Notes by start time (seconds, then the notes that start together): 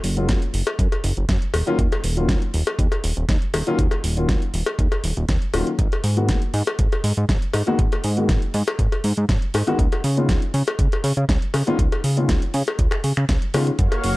0.04 F#1, open hi-hat
0.17 F#3 G#3 A#3 C#4 F4, closed hi-hat
0.29 F#2, kick, snare, closed hi-hat
0.42 closed hi-hat
0.54 F#1, open hi-hat
0.67 closed hi-hat, cowbell
0.79 F#2, kick, closed hi-hat
0.92 closed hi-hat, cowbell
1.04 F#1, open hi-hat
1.17 F#1, closed hi-hat
1.29 F#2, kick, snare, closed hi-hat
1.42 closed hi-hat
1.54 D#1, open hi-hat, cowbell
1.66 D#3 F#3 A#3 C#4 F4, closed hi-hat
1.79 D#2, kick, closed hi-hat
1.92 closed hi-hat, cowbell
2.04 D#1, open hi-hat
2.17 D#3 F#3 A#3 C#4 F4, closed hi-hat
2.29 D#2, kick, snare, closed hi-hat
2.42 closed hi-hat
2.54 D#1, open hi-hat
2.67 closed hi-hat, cowbell
2.79 D#2, kick, closed hi-hat
2.92 closed hi-hat, cowbell
3.04 D#1, open hi-hat
3.17 D#1, closed hi-hat
3.29 D#2, kick, snare, closed hi-hat
3.42 closed hi-hat
3.54 D#1, open hi-hat, cowbell
3.67 D#3 F#3 A#3 C#4 F4, closed hi-hat
3.79 D#2, kick, closed hi-hat
3.91 closed hi-hat, cowbell
4.04 D#1, open hi-hat
4.17 D#3 F#3 A#3 C#4 F4, closed hi-hat
4.29 D#2, kick, snare, closed hi-hat
4.42 closed hi-hat
4.54 D#1, open hi-hat
4.66 closed hi-hat, cowbell
4.79 D#2, kick, closed hi-hat
4.92 closed hi-hat, cowbell
5.04 D#1, open hi-hat
5.17 D#1, closed hi-hat
5.29 D#2, kick, snare, closed hi-hat
5.42 closed hi-hat
5.54 D#1 D#3 F#3 A#3 C#4 F4, open hi-hat, cowbell
5.67 closed hi-hat
5.79 G#1, kick, closed hi-hat
5.92 closed hi-hat, cowbell
6.04 G#2, open hi-hat
6.16 D#3 G#3 A#3 B3 F#4, closed hi-hat
6.29 G#1, kick, snare, closed hi-hat
6.42 closed hi-hat
6.54 G#2, open hi-hat
6.67 closed hi-hat, cowbell
6.79 G#1, kick, closed hi-hat
6.92 closed hi-hat, cowbell
7.04 G#2, open hi-hat
7.17 G#2, closed hi-hat
7.29 G#1, kick, snare, closed hi-hat
7.42 closed hi-hat
7.54 G#2, open hi-hat, cowbell
7.67 D#3 G#3 A#3 B3 F#4, closed hi-hat
7.79 G#1, kick, closed hi-hat
7.92 closed hi-hat, cowbell
8.04 G#2, open hi-hat
8.17 D#3 G#3 A#3 B3 F#4, closed hi-hat
8.29 G#1, kick, snare, closed hi-hat
8.42 closed hi-hat
8.54 G#2, open hi-hat
8.67 closed hi-hat, cowbell
8.79 G#1, kick, closed hi-hat
8.92 closed hi-hat, cowbell
9.04 G#2, open hi-hat
9.17 G#2, closed hi-hat
9.29 G#1, kick, snare, closed hi-hat
9.42 closed hi-hat
9.54 G#2, open hi-hat, cowbell
9.67 D#3 G#3 A#3 B3 F#4, closed hi-hat
9.79 C#2, kick, closed hi-hat
9.92 closed hi-hat, cowbell
10.04 C#3, open hi-hat
10.17 D#3 G#3 B3 C#4 F4, closed hi-hat
10.29 C#2, kick, snare, closed hi-hat
10.42 closed hi-hat
10.54 C#3, open hi-hat
10.67 closed hi-hat, cowbell
10.79 C#2, kick, closed hi-hat
10.92 closed hi-hat, cowbell
11.04 C#3, open hi-hat
11.17 C#3, closed hi-hat
11.29 C#2, kick, snare, closed hi-hat
11.42 closed hi-hat
11.54 C#3, open hi-hat, cowbell
11.67 D#3 G#3 B3 C#4 F4, closed hi-hat
11.79 C#2, kick, closed hi-hat
11.92 closed hi-hat, cowbell
12.04 C#3, open hi-hat
12.16 D#3 G#3 B3 C#4 F4, closed hi-hat
12.29 C#2, kick, snare, closed hi-hat
12.42 closed hi-hat
12.54 C#3, open hi-hat
12.67 closed hi-hat, cowbell
12.79 C#2, kick, closed hi-hat
12.91 finger snap, closed hi-hat, cowbell
13.04 C#3, open hi-hat
13.17 C#3, finger snap, closed hi-hat
13.29 C#2, kick, snare, closed hi-hat
13.42 closed hi-hat
13.54 C#3 D#3 G#3 B3 C#4 F4, open hi-hat, cowbell
13.67 closed hi-hat
13.79 F#2 A#3 F#4 C#5 F5, kick, closed hi-hat
13.92 closed hi-hat, cowbell
14.04 F#1, open hi-hat